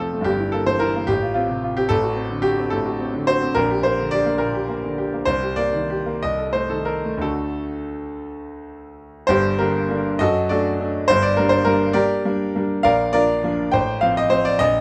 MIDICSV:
0, 0, Header, 1, 2, 480
1, 0, Start_track
1, 0, Key_signature, -2, "minor"
1, 0, Tempo, 542005
1, 254, Time_signature, 6, 3, 24, 8
1, 2167, Tempo, 566038
1, 4567, Tempo, 628272
1, 5527, Tempo, 687285
1, 7447, Tempo, 592885
1, 11919, End_track
2, 0, Start_track
2, 0, Title_t, "Grand piano"
2, 0, Program_c, 0, 0
2, 0, Control_c, 0, 64, 127
2, 0, Note_on_c, 0, 29, 64
2, 0, Note_on_c, 0, 41, 64
2, 0, Note_on_c, 0, 48, 48
2, 0, Note_on_c, 0, 53, 51
2, 0, Note_on_c, 0, 57, 58
2, 0, Note_on_c, 0, 60, 53
2, 0, Note_on_c, 0, 65, 86
2, 0, Note_on_c, 0, 69, 89
2, 119, Note_off_c, 0, 57, 0
2, 119, Note_on_c, 0, 57, 52
2, 185, Note_on_c, 0, 43, 68
2, 201, Note_off_c, 0, 60, 0
2, 203, Note_off_c, 0, 29, 0
2, 210, Note_off_c, 0, 41, 0
2, 216, Note_on_c, 0, 67, 98
2, 220, Note_on_c, 0, 31, 62
2, 246, Note_off_c, 0, 69, 0
2, 248, Note_off_c, 0, 57, 0
2, 269, Control_c, 0, 64, 0
2, 271, Note_off_c, 0, 48, 0
2, 274, Note_off_c, 0, 53, 0
2, 274, Note_off_c, 0, 65, 0
2, 351, Note_on_c, 0, 64, 51
2, 377, Control_c, 0, 64, 127
2, 460, Note_on_c, 0, 69, 89
2, 476, Note_off_c, 0, 67, 0
2, 478, Note_on_c, 0, 58, 54
2, 554, Note_off_c, 0, 64, 0
2, 589, Note_on_c, 0, 52, 50
2, 589, Note_on_c, 0, 72, 100
2, 596, Note_off_c, 0, 69, 0
2, 676, Note_off_c, 0, 58, 0
2, 703, Note_on_c, 0, 70, 102
2, 717, Note_on_c, 0, 64, 60
2, 719, Note_off_c, 0, 72, 0
2, 790, Note_off_c, 0, 52, 0
2, 849, Note_on_c, 0, 58, 58
2, 913, Note_off_c, 0, 43, 0
2, 915, Note_off_c, 0, 64, 0
2, 931, Note_off_c, 0, 31, 0
2, 947, Note_on_c, 0, 67, 105
2, 955, Note_off_c, 0, 70, 0
2, 958, Note_on_c, 0, 33, 67
2, 969, Note_off_c, 0, 58, 0
2, 986, Control_c, 0, 64, 0
2, 1086, Note_on_c, 0, 65, 53
2, 1142, Control_c, 0, 64, 127
2, 1175, Note_off_c, 0, 65, 0
2, 1188, Note_on_c, 0, 65, 81
2, 1201, Note_off_c, 0, 67, 0
2, 1202, Note_on_c, 0, 60, 61
2, 1323, Note_on_c, 0, 48, 56
2, 1402, Note_off_c, 0, 60, 0
2, 1437, Note_off_c, 0, 65, 0
2, 1450, Note_on_c, 0, 65, 57
2, 1523, Note_off_c, 0, 48, 0
2, 1564, Note_on_c, 0, 67, 101
2, 1566, Note_on_c, 0, 60, 60
2, 1645, Note_off_c, 0, 65, 0
2, 1666, Note_off_c, 0, 33, 0
2, 1671, Note_on_c, 0, 69, 116
2, 1681, Note_on_c, 0, 33, 75
2, 1689, Note_off_c, 0, 67, 0
2, 1690, Note_off_c, 0, 60, 0
2, 1707, Control_c, 0, 64, 0
2, 1798, Note_on_c, 0, 66, 56
2, 1840, Control_c, 0, 64, 127
2, 1911, Note_on_c, 0, 60, 56
2, 1993, Note_off_c, 0, 66, 0
2, 2036, Note_on_c, 0, 50, 55
2, 2109, Note_off_c, 0, 60, 0
2, 2142, Note_on_c, 0, 67, 102
2, 2154, Note_off_c, 0, 69, 0
2, 2155, Note_on_c, 0, 66, 58
2, 2231, Note_off_c, 0, 50, 0
2, 2285, Note_on_c, 0, 60, 58
2, 2348, Note_off_c, 0, 66, 0
2, 2384, Note_on_c, 0, 69, 94
2, 2389, Note_off_c, 0, 67, 0
2, 2399, Note_on_c, 0, 45, 59
2, 2474, Note_off_c, 0, 60, 0
2, 2516, Note_on_c, 0, 66, 57
2, 2591, Note_off_c, 0, 45, 0
2, 2636, Note_on_c, 0, 60, 60
2, 2710, Note_off_c, 0, 66, 0
2, 2752, Note_on_c, 0, 50, 59
2, 2830, Note_off_c, 0, 60, 0
2, 2866, Note_on_c, 0, 72, 114
2, 2871, Note_off_c, 0, 69, 0
2, 2872, Note_on_c, 0, 66, 60
2, 2947, Note_off_c, 0, 50, 0
2, 2990, Note_on_c, 0, 60, 62
2, 3067, Note_off_c, 0, 66, 0
2, 3078, Note_off_c, 0, 33, 0
2, 3098, Note_on_c, 0, 70, 112
2, 3111, Note_on_c, 0, 34, 79
2, 3112, Note_off_c, 0, 72, 0
2, 3114, Note_off_c, 0, 60, 0
2, 3135, Control_c, 0, 64, 0
2, 3235, Note_on_c, 0, 67, 67
2, 3256, Control_c, 0, 64, 127
2, 3342, Note_on_c, 0, 72, 96
2, 3348, Note_off_c, 0, 70, 0
2, 3356, Note_on_c, 0, 58, 59
2, 3429, Note_off_c, 0, 67, 0
2, 3480, Note_on_c, 0, 50, 58
2, 3549, Note_off_c, 0, 58, 0
2, 3577, Note_on_c, 0, 74, 109
2, 3588, Note_on_c, 0, 67, 62
2, 3590, Note_off_c, 0, 72, 0
2, 3670, Note_off_c, 0, 50, 0
2, 3702, Note_on_c, 0, 58, 64
2, 3783, Note_off_c, 0, 67, 0
2, 3806, Note_on_c, 0, 70, 90
2, 3817, Note_on_c, 0, 46, 58
2, 3825, Note_off_c, 0, 74, 0
2, 3898, Note_off_c, 0, 58, 0
2, 3946, Note_on_c, 0, 67, 58
2, 4016, Note_off_c, 0, 46, 0
2, 4058, Note_off_c, 0, 70, 0
2, 4066, Note_on_c, 0, 58, 61
2, 4141, Note_off_c, 0, 67, 0
2, 4201, Note_on_c, 0, 50, 52
2, 4263, Note_off_c, 0, 58, 0
2, 4315, Note_on_c, 0, 67, 59
2, 4394, Note_off_c, 0, 50, 0
2, 4446, Note_on_c, 0, 58, 54
2, 4515, Note_off_c, 0, 67, 0
2, 4528, Note_off_c, 0, 34, 0
2, 4548, Note_on_c, 0, 72, 107
2, 4557, Note_on_c, 0, 36, 70
2, 4569, Note_off_c, 0, 58, 0
2, 4579, Control_c, 0, 64, 0
2, 4678, Note_on_c, 0, 67, 59
2, 4711, Control_c, 0, 64, 127
2, 4784, Note_on_c, 0, 74, 103
2, 4792, Note_off_c, 0, 72, 0
2, 4793, Note_on_c, 0, 58, 57
2, 4870, Note_off_c, 0, 67, 0
2, 4912, Note_on_c, 0, 51, 55
2, 4988, Note_off_c, 0, 58, 0
2, 5043, Note_on_c, 0, 67, 60
2, 5108, Note_off_c, 0, 51, 0
2, 5164, Note_on_c, 0, 58, 60
2, 5234, Note_off_c, 0, 67, 0
2, 5255, Note_off_c, 0, 36, 0
2, 5272, Note_off_c, 0, 74, 0
2, 5283, Note_off_c, 0, 58, 0
2, 5291, Note_on_c, 0, 75, 98
2, 5295, Control_c, 0, 64, 0
2, 5301, Note_on_c, 0, 36, 62
2, 5407, Note_on_c, 0, 69, 50
2, 5429, Control_c, 0, 64, 127
2, 5522, Note_on_c, 0, 72, 94
2, 5530, Note_off_c, 0, 75, 0
2, 5530, Note_on_c, 0, 57, 54
2, 5596, Note_off_c, 0, 69, 0
2, 5639, Note_off_c, 0, 72, 0
2, 5641, Note_on_c, 0, 69, 79
2, 5643, Note_on_c, 0, 51, 49
2, 5713, Note_off_c, 0, 57, 0
2, 5747, Note_off_c, 0, 69, 0
2, 5749, Note_on_c, 0, 70, 85
2, 5758, Note_on_c, 0, 69, 53
2, 5831, Note_off_c, 0, 51, 0
2, 5887, Note_on_c, 0, 57, 55
2, 5953, Note_off_c, 0, 69, 0
2, 5975, Note_on_c, 0, 38, 63
2, 5982, Note_off_c, 0, 57, 0
2, 5989, Note_on_c, 0, 50, 49
2, 5991, Note_off_c, 0, 36, 0
2, 5993, Note_on_c, 0, 57, 44
2, 5999, Note_off_c, 0, 70, 0
2, 6003, Note_on_c, 0, 66, 48
2, 6003, Note_on_c, 0, 69, 88
2, 6017, Control_c, 0, 64, 0
2, 6170, Control_c, 0, 64, 127
2, 6734, Note_off_c, 0, 69, 0
2, 7403, Note_off_c, 0, 38, 0
2, 7410, Note_off_c, 0, 50, 0
2, 7412, Note_off_c, 0, 57, 0
2, 7417, Note_off_c, 0, 66, 0
2, 7437, Note_on_c, 0, 72, 110
2, 7446, Note_on_c, 0, 31, 72
2, 7453, Note_on_c, 0, 43, 88
2, 7455, Note_on_c, 0, 67, 94
2, 7462, Control_c, 0, 64, 0
2, 7607, Control_c, 0, 64, 127
2, 7679, Note_off_c, 0, 67, 0
2, 7684, Note_off_c, 0, 31, 0
2, 7686, Note_off_c, 0, 72, 0
2, 7687, Note_off_c, 0, 43, 0
2, 7691, Note_on_c, 0, 70, 91
2, 7702, Note_on_c, 0, 67, 73
2, 7703, Note_on_c, 0, 62, 65
2, 7704, Note_on_c, 0, 50, 54
2, 7708, Note_on_c, 0, 58, 54
2, 7918, Note_off_c, 0, 50, 0
2, 7919, Note_off_c, 0, 58, 0
2, 7932, Note_off_c, 0, 62, 0
2, 7939, Note_on_c, 0, 50, 56
2, 7944, Note_on_c, 0, 62, 64
2, 7945, Note_on_c, 0, 58, 61
2, 8152, Note_off_c, 0, 67, 0
2, 8157, Note_off_c, 0, 50, 0
2, 8160, Note_off_c, 0, 58, 0
2, 8160, Note_off_c, 0, 62, 0
2, 8179, Note_off_c, 0, 70, 0
2, 8181, Note_on_c, 0, 75, 108
2, 8194, Note_on_c, 0, 42, 75
2, 8196, Control_c, 0, 64, 0
2, 8196, Note_on_c, 0, 66, 87
2, 8196, Note_on_c, 0, 69, 88
2, 8354, Control_c, 0, 64, 127
2, 8415, Note_off_c, 0, 66, 0
2, 8416, Note_off_c, 0, 69, 0
2, 8424, Note_off_c, 0, 42, 0
2, 8425, Note_off_c, 0, 75, 0
2, 8427, Note_on_c, 0, 74, 93
2, 8439, Note_on_c, 0, 57, 55
2, 8440, Note_on_c, 0, 66, 70
2, 8440, Note_on_c, 0, 69, 68
2, 8441, Note_on_c, 0, 62, 61
2, 8649, Note_off_c, 0, 57, 0
2, 8651, Note_off_c, 0, 62, 0
2, 8675, Note_on_c, 0, 57, 51
2, 8681, Note_on_c, 0, 62, 63
2, 8878, Note_off_c, 0, 66, 0
2, 8878, Note_off_c, 0, 69, 0
2, 8883, Note_off_c, 0, 57, 0
2, 8887, Note_off_c, 0, 62, 0
2, 8900, Note_on_c, 0, 72, 126
2, 8903, Note_off_c, 0, 74, 0
2, 8907, Note_on_c, 0, 31, 72
2, 8914, Control_c, 0, 64, 0
2, 8917, Note_on_c, 0, 43, 82
2, 9017, Note_on_c, 0, 74, 102
2, 9018, Note_off_c, 0, 72, 0
2, 9027, Control_c, 0, 64, 127
2, 9131, Note_off_c, 0, 31, 0
2, 9134, Note_off_c, 0, 74, 0
2, 9134, Note_on_c, 0, 70, 100
2, 9136, Note_off_c, 0, 43, 0
2, 9150, Note_on_c, 0, 55, 53
2, 9151, Note_on_c, 0, 58, 53
2, 9156, Note_on_c, 0, 62, 65
2, 9236, Note_on_c, 0, 72, 108
2, 9250, Note_off_c, 0, 70, 0
2, 9352, Note_off_c, 0, 55, 0
2, 9353, Note_off_c, 0, 58, 0
2, 9355, Note_off_c, 0, 62, 0
2, 9360, Note_off_c, 0, 72, 0
2, 9360, Note_on_c, 0, 70, 111
2, 9369, Note_on_c, 0, 55, 56
2, 9375, Note_on_c, 0, 58, 60
2, 9377, Note_on_c, 0, 62, 60
2, 9582, Note_off_c, 0, 55, 0
2, 9585, Note_off_c, 0, 58, 0
2, 9586, Note_off_c, 0, 62, 0
2, 9592, Note_off_c, 0, 70, 0
2, 9593, Note_on_c, 0, 74, 106
2, 9599, Note_on_c, 0, 67, 86
2, 9600, Note_on_c, 0, 55, 57
2, 9603, Note_on_c, 0, 58, 54
2, 9604, Note_on_c, 0, 70, 76
2, 9605, Note_on_c, 0, 62, 62
2, 9620, Control_c, 0, 64, 0
2, 9756, Control_c, 0, 64, 127
2, 9822, Note_off_c, 0, 55, 0
2, 9824, Note_off_c, 0, 58, 0
2, 9824, Note_off_c, 0, 62, 0
2, 9851, Note_on_c, 0, 55, 59
2, 9852, Note_on_c, 0, 62, 62
2, 9854, Note_on_c, 0, 58, 62
2, 10069, Note_off_c, 0, 55, 0
2, 10070, Note_off_c, 0, 62, 0
2, 10071, Note_off_c, 0, 58, 0
2, 10092, Note_on_c, 0, 58, 60
2, 10098, Note_on_c, 0, 62, 57
2, 10099, Note_on_c, 0, 55, 59
2, 10293, Note_off_c, 0, 67, 0
2, 10296, Note_off_c, 0, 70, 0
2, 10305, Note_off_c, 0, 58, 0
2, 10308, Note_off_c, 0, 62, 0
2, 10309, Note_off_c, 0, 55, 0
2, 10317, Note_off_c, 0, 74, 0
2, 10320, Note_on_c, 0, 77, 116
2, 10329, Note_on_c, 0, 34, 74
2, 10330, Note_on_c, 0, 70, 95
2, 10330, Note_on_c, 0, 74, 93
2, 10342, Control_c, 0, 64, 0
2, 10458, Control_c, 0, 64, 127
2, 10545, Note_off_c, 0, 74, 0
2, 10546, Note_off_c, 0, 70, 0
2, 10554, Note_off_c, 0, 34, 0
2, 10557, Note_off_c, 0, 77, 0
2, 10559, Note_on_c, 0, 74, 116
2, 10563, Note_on_c, 0, 53, 53
2, 10564, Note_on_c, 0, 65, 84
2, 10565, Note_on_c, 0, 70, 80
2, 10571, Note_on_c, 0, 58, 58
2, 10573, Note_on_c, 0, 62, 62
2, 10776, Note_off_c, 0, 53, 0
2, 10780, Note_off_c, 0, 58, 0
2, 10781, Note_off_c, 0, 62, 0
2, 10813, Note_on_c, 0, 53, 57
2, 10814, Note_on_c, 0, 58, 60
2, 10814, Note_on_c, 0, 62, 68
2, 11010, Note_off_c, 0, 65, 0
2, 11011, Note_off_c, 0, 70, 0
2, 11026, Note_off_c, 0, 53, 0
2, 11026, Note_off_c, 0, 58, 0
2, 11026, Note_off_c, 0, 62, 0
2, 11036, Note_on_c, 0, 79, 113
2, 11041, Note_off_c, 0, 74, 0
2, 11049, Note_on_c, 0, 72, 91
2, 11050, Note_on_c, 0, 33, 72
2, 11059, Control_c, 0, 64, 0
2, 11174, Control_c, 0, 64, 127
2, 11271, Note_off_c, 0, 72, 0
2, 11274, Note_on_c, 0, 77, 98
2, 11281, Note_off_c, 0, 33, 0
2, 11282, Note_off_c, 0, 79, 0
2, 11287, Note_on_c, 0, 53, 60
2, 11290, Note_on_c, 0, 60, 68
2, 11399, Note_off_c, 0, 77, 0
2, 11406, Note_on_c, 0, 75, 108
2, 11501, Note_off_c, 0, 53, 0
2, 11502, Note_off_c, 0, 60, 0
2, 11508, Note_on_c, 0, 72, 107
2, 11520, Note_on_c, 0, 53, 53
2, 11522, Note_on_c, 0, 60, 61
2, 11524, Note_off_c, 0, 75, 0
2, 11629, Note_on_c, 0, 74, 106
2, 11634, Note_off_c, 0, 72, 0
2, 11736, Note_off_c, 0, 53, 0
2, 11738, Note_off_c, 0, 60, 0
2, 11744, Note_on_c, 0, 75, 122
2, 11755, Note_on_c, 0, 34, 86
2, 11756, Note_off_c, 0, 74, 0
2, 11776, Control_c, 0, 64, 0
2, 11919, Note_off_c, 0, 34, 0
2, 11919, Note_off_c, 0, 75, 0
2, 11919, End_track
0, 0, End_of_file